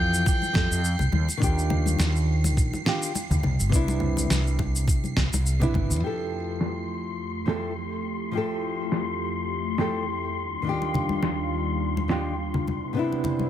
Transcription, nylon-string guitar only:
0.00 0.52 E3 medium
0.00 0.51 F3 medium
0.00 0.53 G4 medium
0.00 0.53 A4 loud
0.53 0.78 F3 medium
0.53 0.79 E4 medium
0.53 0.80 G4 medium
0.53 0.80 A4 medium
1.37 2.81 D#3 medium
1.37 2.82 D4 medium
1.42 2.83 F4 medium
1.42 2.84 G4 medium
2.85 3.10 D#3 medium
2.85 3.10 D4 medium
2.85 3.11 F4 medium
2.85 3.12 G4 medium
3.69 5.12 C3 medium
3.69 5.13 B3 medium
3.74 5.14 D4 medium
3.74 5.15 E4 medium
5.60 5.99 C3 medium
5.60 6.00 B3 medium
5.60 6.01 D4 medium
5.60 6.00 E4 loud
6.00 7.43 F3 medium
6.00 7.44 E4 medium
6.04 7.45 G4 medium
6.04 7.46 A4 medium
7.46 7.71 F3 medium
7.46 7.71 E4 medium
7.46 7.72 G4 medium
7.46 7.73 A4 medium
8.32 9.74 F3 medium
8.32 9.75 E4 medium
8.32 9.76 G4 medium
8.37 9.77 A4 medium
9.78 10.02 F3 medium
9.78 10.03 E4 medium
9.78 10.03 G4 medium
9.78 10.04 A4 medium
10.62 12.05 D#3 medium
10.62 12.06 D4 medium
10.67 12.07 F4 medium
10.67 12.08 G4 medium
12.08 12.33 D#3 medium
12.08 12.34 D4 medium
12.08 12.34 F4 medium
12.08 12.34 G4 medium
12.93 13.50 C3 medium
12.93 13.50 B3 medium
12.93 13.50 D4 medium
12.99 13.50 E4 medium

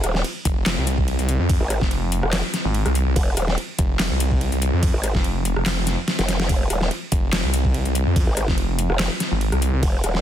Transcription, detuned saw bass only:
0.45 0.76 F1 medium
0.77 1.17 C2 loud
1.19 1.38 C2 loud
1.40 1.59 F2 loud
1.81 2.21 F1 loud
2.65 2.84 G#1 loud
2.86 3.05 C2 loud
3.06 3.15 C2 loud
3.79 4.09 F1 loud
4.11 4.50 C2 loud
4.52 4.71 C2 loud
4.73 4.92 F2 loud
5.15 5.55 F1 loud
5.56 5.96 F1 medium
7.12 7.42 F1 loud
7.44 7.84 C2 medium
7.86 8.05 C2 loud
8.06 8.25 F2 loud
8.48 8.88 F1 loud
9.31 9.51 G#1 loud
9.52 9.71 C2 loud
9.73 9.81 C2 loud

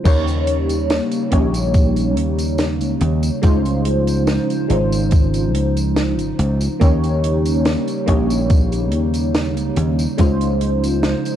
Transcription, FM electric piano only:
0.04 1.27 A#3 medium
0.04 1.27 C#4 medium
0.04 1.27 D#4 medium
0.04 1.28 G4 medium
0.04 1.28 C#5 loud
1.31 3.38 A#3 medium
1.31 3.38 C#4 medium
1.31 3.39 D#4 medium
1.31 3.39 G4 medium
1.31 3.39 C#5 medium
3.42 4.65 G#3 medium
3.42 4.65 C#4 medium
3.42 4.65 D#4 medium
3.42 4.66 F4 medium
3.42 4.66 C5 loud
4.69 6.76 G#3 medium
4.69 6.76 C#4 medium
4.69 6.76 D#4 medium
4.69 6.77 F4 medium
4.69 6.77 C5 medium
6.80 8.02 A#3 loud
6.80 8.03 C#4 medium
6.80 8.03 D#4 medium
6.80 8.04 G4 medium
6.80 8.04 C#5 loud
8.06 10.14 A#3 medium
8.06 10.14 C#4 medium
8.06 10.14 D#4 medium
8.06 10.15 G4 medium
8.06 10.15 C#5 medium
10.18 11.36 G#3 medium
10.18 11.36 C#4 medium
10.18 11.36 D#4 medium
10.18 11.36 F4 medium
10.18 11.36 C5 loud

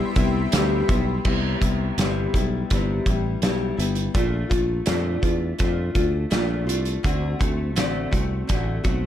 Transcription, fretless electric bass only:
0.16 0.45 C2 medium
0.53 0.82 D2 medium
0.89 1.18 B1 medium
1.25 1.54 C2 medium
1.61 1.90 C2 medium
1.98 2.26 G1 medium
2.34 2.63 B1 medium
2.71 2.99 G1 medium
3.06 3.35 A1 medium
3.42 3.71 B1 medium
3.78 4.07 G1 medium
4.15 4.44 A#1 medium
4.51 4.80 A#1 medium
4.88 5.16 F2 medium
5.23 5.52 E2 medium
5.60 5.89 F2 medium
5.95 6.24 D2 medium
6.32 6.67 A#1 medium
6.67 6.97 C2 medium
7.04 7.33 D2 loud
7.41 7.76 D2 medium
7.76 8.05 A1 medium
8.13 8.42 C2 medium
8.50 8.78 A1 medium
8.85 9.06 B1 medium

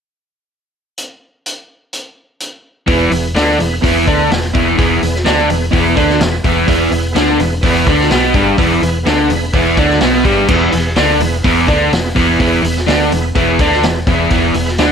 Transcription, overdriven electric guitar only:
2.87 3.10 E2 medium
2.87 3.11 E3 loud
3.12 3.30 E2 medium
3.35 3.58 D3 medium
3.35 3.59 D4 loud
3.59 3.78 E2 medium
3.82 4.06 E2 medium
3.82 4.06 E3 loud
4.07 4.30 D3 medium
4.07 4.30 D4 medium
4.31 4.50 E2 medium
4.54 4.75 E2 medium
4.54 4.77 E3 loud
4.77 5.00 E2 medium
4.77 5.01 E3 loud
5.02 5.21 E2 medium
5.25 5.48 D3 medium
5.25 5.49 D4 loud
5.50 5.68 E2 medium
5.71 5.95 E2 medium
5.71 5.96 E3 loud
5.96 6.19 D3 medium
5.96 6.20 D4 medium
6.20 6.39 E2 medium
6.45 6.66 E2 medium
6.45 6.67 E3 loud
6.68 6.91 E2 loud
6.68 6.91 E3 loud
6.92 7.11 E2 medium
7.15 7.38 D3 medium
7.15 7.39 D4 loud
7.40 7.59 E2 medium
7.64 7.87 E2 loud
7.64 7.87 E3 loud
7.87 8.10 D3 medium
7.87 8.11 D4 loud
8.11 8.34 B2 medium
8.11 8.34 B3 loud
8.35 8.58 G2 medium
8.35 8.58 G3 loud
8.58 8.81 E2 loud
8.58 8.82 E3 loud
8.83 9.02 E2 medium
9.06 9.29 D3 medium
9.06 9.30 D4 medium
9.31 9.49 E2 medium
9.55 9.77 E2 medium
9.55 9.78 E3 loud
9.78 10.01 D3 loud
9.78 10.01 D4 medium
10.01 10.24 B2 loud
10.01 10.25 B3 loud
10.24 10.48 G2 medium
10.24 10.48 G3 loud
10.48 10.72 E2 loud
10.48 10.72 E3 loud
10.73 10.92 E2 medium
10.96 11.20 D3 medium
10.96 11.20 D4 medium
11.22 11.40 E2 medium
11.45 11.68 E2 medium
11.45 11.68 E3 loud
11.67 11.91 D3 medium
11.67 11.91 D4 loud
11.92 12.11 E2 medium
12.15 12.39 E2 medium
12.15 12.39 E3 loud
12.40 12.62 E2 loud
12.40 12.63 E3 loud
12.63 12.82 E2 medium
12.87 13.10 D3 medium
12.87 13.10 D4 medium
13.13 13.31 E2 medium
13.35 13.58 E2 loud
13.35 13.58 E3 loud
13.60 13.82 D3 medium
13.60 13.83 D4 loud
13.84 14.02 E2 medium
14.07 14.29 E2 medium
14.07 14.30 E3 medium
14.30 14.53 E2 medium
14.30 14.54 E3 loud
14.56 14.74 E2 medium
14.79 14.92 D3 medium
14.79 14.92 D4 loud

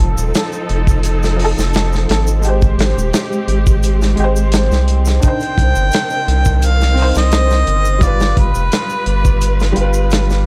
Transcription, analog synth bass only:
0.00 0.15 F1 loud
0.18 0.32 D#1 medium
0.70 1.54 F1 loud
1.58 2.06 F1 loud
2.09 2.76 G#1 medium
2.78 2.94 G#1 loud
2.97 3.12 D#1 medium
3.48 4.15 G#1 loud
4.18 4.71 G#1 loud
4.71 5.20 C2 medium
5.58 5.74 C2 loud
5.76 5.91 G1 medium
6.28 7.12 C2 loud
7.16 7.64 C2 loud
7.67 8.34 G1 medium
8.37 8.53 G1 loud
8.56 8.70 F1 medium
9.06 9.73 G1 loud
9.77 10.46 G1 loud

